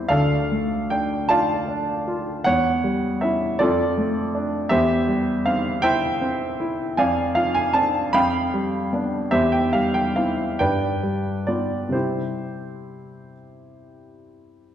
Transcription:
Already playing: E2 G3 C4 E4 G4 C5
0.09 D2 A4 D5 F5
0.51 A3
0.90 D4 G5
1.29 F4 D5 F5 A5
1.68 D4
2.08 F4
2.44 E2 C#5 F#5
2.84 G3
3.21 C#4 E4 E5
3.59 F2 F4 A4 D5
3.98 A3
4.35 D4
4.69 E2 G4 C5 E5
5.08 G3
5.46 C4 F5
5.82 E4 C5 E5 G5
6.21 C4
6.60 E4
6.97 F2 D5 F5 G#5
7.35 F3 F5
7.54 G#5
7.73 C4 D4 A5
8.13 F2 F5 G5 B5
8.54 G3
8.93 B3 D4
9.31 E2 G4 C5 E5
9.52 G5
9.73 G3 F5
9.94 G5
10.16 C4 E4 F5
10.59 G2 B4 D5 G5
11.03 G3
11.47 B3 F4 D5
11.89 C3 G3 C4 C5
11.94 E4 G4

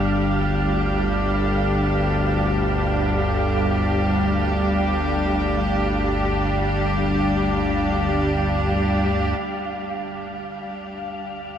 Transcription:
Already playing: G1 D2 G3 D4 G4 F5
9.41 G1 D2 F5

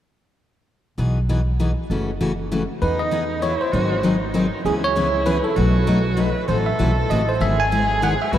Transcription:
0.98 B1 B2 E3 B3 D#4 G#4
1.29 B2 E3 B3 D#4 G#4
1.60 B2 E3 B3 D#4 G#4
1.90 F#1 C#3 E3 A3 C#4 F#4
2.21 C#3 E3 A3 C#4 F#4
2.52 C#3 E3 A3 C#4 F#4
2.81 E2 E3 B3 D#4 G#4 B4
2.99 D#5
3.11 E3 B3 D#4 G#4
3.41 E3 B3 D#4 E4 G#4 C#5
3.61 C5
3.71 G#1 D#3 F#3 C4 D#4 F#4 G#4
4.03 D#3 F#3 C4 D#4 G#4
4.34 D#3 F#3 C4 D#4 G#4
4.65 C#2 C#3 E3 B3 C#4 E4 G#4
4.84 C#5
4.96 C#3 E3 B3 C#4 G#4
5.26 C#3 E3 B3 C#4 G#4 B4
5.44 A4
5.56 B1 B2 F#3 A3 D#4 F#4
5.87 B2 F#3 A3 D#4 F#4
6.17 B2 F#3 A3 D#4 F#4 B4
6.48 A1 C3 E3 A3 E4 F#4 A4 C5
6.66 E5
6.79 B1 C3 E3 A3 E4 F#4
7.10 A1 C3 E3 A3 E4 F#4 D#5
7.29 C5
7.40 G#1 D#3 G#3 B3 E4 G#4 E5
7.60 G#5
7.72 D#3 G#3 B3 E4 G#4
8.02 D#3 G#3 B3 E4 G#4 F#5
8.22 E5
8.31 B1 B2 F#3 A3 D#4 F#4 B4

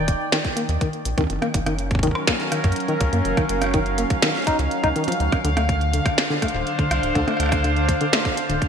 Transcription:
Already playing: D#1 D#3 D5 G5
0.08 kick, closed hi-hat
0.32 D#3, snare, closed hi-hat
0.45 kick, closed hi-hat
0.57 A#3, closed hi-hat
0.69 D#2, closed hi-hat
0.81 D#3, kick, closed hi-hat
0.93 closed hi-hat
1.05 A#1, closed hi-hat, shaker
1.18 D#2 D#3, kick, closed hi-hat, percussion blips
1.21 percussion blips
1.24 percussion blips
1.27 F#1, closed hi-hat, percussion blips
1.30 F#3, percussion blips
1.33 C#4, percussion blips
1.36 percussion blips
1.39 A#3, cross-stick, closed hi-hat, percussion blips
1.42 percussion blips
1.48 A#4
1.54 F#1, kick, closed hi-hat
1.66 D#3, cross-stick, closed hi-hat, percussion blips
1.78 F5, closed hi-hat
1.91 kick, closed hi-hat
1.95 kick
1.99 D#3, kick
2.03 kick, closed hi-hat
2.07 kick
2.11 kick, cross-stick
2.27 A#3, kick, snare, closed hi-hat
2.40 closed hi-hat
2.52 D#3, cross-stick, closed hi-hat
2.64 F#2, kick, closed hi-hat
2.72 closed hi-hat
2.76 closed hi-hat
2.80 closed hi-hat
2.88 D#3, closed hi-hat
3.01 C#2, kick, closed hi-hat
3.13 F#2 A#3, closed hi-hat
3.25 F#1, closed hi-hat
3.37 D#3, kick, cross-stick, closed hi-hat, percussion blips
3.49 F#1, closed hi-hat
3.62 cross-stick, closed hi-hat, percussion blips, shaker
3.64 cross-stick
3.66 cross-stick
3.69 cross-stick
3.71 D#3, kick, cross-stick, closed hi-hat
3.86 closed hi-hat
3.98 A#3, closed hi-hat
4.10 kick, closed hi-hat
4.22 D#3, snare, closed hi-hat
4.35 closed hi-hat
4.37 closed hi-hat
4.40 closed hi-hat
4.42 closed hi-hat
4.44 D#4, closed hi-hat
4.47 kick, closed hi-hat
4.59 C#2, closed hi-hat
4.71 closed hi-hat
4.83 C#2 D#4, kick, closed hi-hat
4.96 D#3, closed hi-hat, shaker
5.04 closed hi-hat
5.08 F3, closed hi-hat, percussion blips
5.12 closed hi-hat
5.20 D2 D3, closed hi-hat
5.32 kick, cross-stick, closed hi-hat, percussion blips
5.45 D2 D3 D4, closed hi-hat
5.57 A3, cross-stick, closed hi-hat, percussion blips
5.69 kick, closed hi-hat
5.81 C5, closed hi-hat
5.93 D3, closed hi-hat
6.06 kick, cross-stick, closed hi-hat
6.18 snare, closed hi-hat
6.30 D3
6.42 A3, kick, cross-stick, closed hi-hat
6.48 closed hi-hat
6.54 D1
6.67 closed hi-hat
6.79 D3, kick, closed hi-hat
6.91 C2, cross-stick, closed hi-hat
7.03 D1, closed hi-hat
7.15 D2 D3, kick, closed hi-hat
7.28 A3, cross-stick, closed hi-hat, percussion blips
7.31 cross-stick
7.34 cross-stick
7.37 D2, cross-stick
7.40 cross-stick, closed hi-hat
7.43 cross-stick
7.46 cross-stick
7.49 kick, cross-stick
7.52 cross-stick, closed hi-hat, percussion blips, shaker
7.64 D3, closed hi-hat
7.77 closed hi-hat
7.89 kick, closed hi-hat
8.01 D3, closed hi-hat
8.13 A3, snare, closed hi-hat
8.25 kick, closed hi-hat
8.37 closed hi-hat
8.49 D1 D3, closed hi-hat
8.62 kick, closed hi-hat

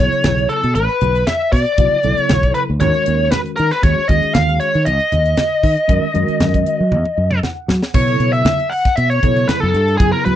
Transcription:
Already playing: C#3 F#3 B3 E4 C#5
0.00 G#4
0.12 muted fingered electric bass stroke, closed hi-hat
0.24 B1, snare, closed hi-hat, high conga
0.38 closed hi-hat
0.49 A4, closed hi-hat
0.64 B2, closed hi-hat
0.75 A1 B4, closed hi-hat, muted conga
0.89 closed hi-hat
1.01 B1, closed hi-hat, muted conga, high conga
1.15 closed hi-hat
1.27 E5, snare, closed hi-hat, high conga
1.52 B2 D5, kick, open hi-hat, muted conga
1.66 closed hi-hat
1.78 B1 C#3 F#3 B3 E4 F#4, kick, closed hi-hat
2.03 B1 C#3 F#3 B3 E4 A4, closed hi-hat
2.17 C#5, muted fingered electric bass stroke, closed hi-hat
2.23 C#5
2.29 B1, snare, closed hi-hat, high conga
2.43 kick, closed hi-hat
2.54 B4, closed hi-hat
2.70 D2
2.80 D#2 D#3 G#3 C#4 F#4 A#4 C#5, closed hi-hat, muted conga, high conga, low conga
2.94 closed hi-hat
3.06 D#2, closed hi-hat, muted conga
3.32 B4, snare, closed hi-hat, high conga
3.46 closed hi-hat
3.56 D#3 A#4, closed hi-hat, muted conga
3.71 B4, snare, closed hi-hat
3.82 D#2 D#3 G#3 C#4 F#4 G#4 C#5, kick, closed hi-hat, muted conga
3.99 muted fingered electric bass stroke
4.08 D#2 D#3 G#3 C#4 F#4 G#4 D#5, kick, closed hi-hat
4.22 muted fingered electric bass stroke, closed hi-hat
4.34 D#2 F5, snare, closed hi-hat, high conga
4.49 closed hi-hat
4.60 C#5, closed hi-hat
4.74 D#3, closed hi-hat
4.85 C#2 D#5, closed hi-hat, muted conga
5.00 closed hi-hat
5.12 D#2, closed hi-hat, muted conga, high conga
5.26 closed hi-hat
5.37 snare, closed hi-hat, high conga
5.63 D#3, kick, open hi-hat, muted conga
5.77 closed hi-hat
5.88 F#2 D#3 G#3 C#4 F#4 A#4, kick, closed hi-hat, muted conga
6.03 muted fingered electric bass stroke
6.14 F#2 D#3 G#3 C#4 F#4 A#4, closed hi-hat
6.28 muted fingered electric bass stroke, closed hi-hat
6.40 F#2, snare, closed hi-hat, high conga
6.54 kick, closed hi-hat
6.66 closed hi-hat
6.80 F#3
6.92 E2, high tom, muted conga, high conga
7.05 high tom
7.17 F#2 D#5, muted conga
7.31 mid tom
7.43 F#5, snare, high conga
7.68 F#3, snare, muted conga, low conga
7.83 snare
7.93 B2 C#3 F#3 B3 E4 A4 C#5, kick, crash, muted conga
8.08 closed hi-hat
8.20 B2, closed hi-hat, muted conga
8.33 E5, closed hi-hat
8.45 snare, closed hi-hat, high conga
8.60 closed hi-hat
8.70 F#5, open hi-hat
8.85 kick, snare, closed hi-hat
8.96 B2 E5, closed hi-hat
9.10 C#5, closed hi-hat
9.22 B2 C#3 F#3 B3 E4 A4, kick, closed hi-hat, high conga
9.36 closed hi-hat
9.48 B4, snare, closed hi-hat, high conga
9.60 F#2 A4
9.74 G2, closed hi-hat
9.88 closed hi-hat
9.97 F#2 C#3 F#3 B3 E4 G#4, kick, closed hi-hat
10.11 A#4
10.25 F#3 B4, closed hi-hat, muted conga, low conga

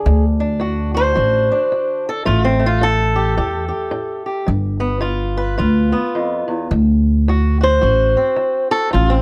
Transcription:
Already playing: D3 G#4
0.06 D2
0.40 D4
0.60 D2 F#4
0.94 F#4 C5
1.15 A1 D2 F#4
1.52 D4
1.72 D2
2.09 A4
2.25 A1 A2 A3 F4
2.45 C4
2.59 A3
2.66 F4
2.81 A2 A4
3.16 G4
3.37 E2 A2 G4
3.68 G4
3.91 A2
4.26 G4
4.47 G1 G2
4.80 B3
5.01 G2 F4
5.37 B4
5.58 D2 G2 F4
5.92 B3
6.15 F2
6.48 E2
6.71 D2
7.28 D2 F#4
7.61 F#4 C5
7.81 A1 D2 F#4
8.17 C4
8.36 D2
8.71 F#4 A4
8.91 A1 A2 F4
9.10 C4

